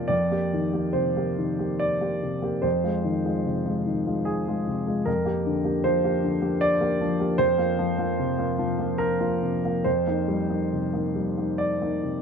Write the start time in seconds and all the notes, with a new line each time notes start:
Already playing: C3 F3 A#3 F4 A#4 D5
0.08 F2 D5
0.31 A#3 G4
0.53 D#3
0.74 A#3 G4
0.93 C3 C5
1.17 A#3 G4
1.38 D#3
1.59 A#3 G4
1.80 D5
2.01 A#3 G4
2.23 C3
2.42 A#3 G4
2.62 F2 C5
2.84 G#3 F4
3.05 D#3
3.25 G#3 F4
3.45 C3
3.66 G#3 F4
3.87 D#3
4.06 G#3 F4
4.25 G#4
4.47 G#3 F4
4.67 C3
4.87 G#3 F4
5.05 F2 A#4
5.26 A#3 G4
5.46 D3
5.65 A#3 G4
5.84 F3 C5
6.04 A#3 G4
6.23 D3
6.42 A#3 G4
6.61 D5
6.81 A#3 G4
7.01 F3
7.20 A#3 G4
7.38 F2 C5
7.58 A#3 F4
7.79 F3
7.98 A#3 F4
8.19 C3
8.39 A#3 F4
8.59 F3
8.79 A#3 F4
8.98 A#4
9.21 A#3 F4
9.43 C3
9.65 A#3 F4
9.84 F2 C5
10.07 A#3 D#4
10.28 G3
10.50 A#3 D#4
10.72 C3
10.93 A#3 D#4
11.15 G3
11.38 A#3 D#4
11.58 D5
11.82 A#3 D#4
12.03 C3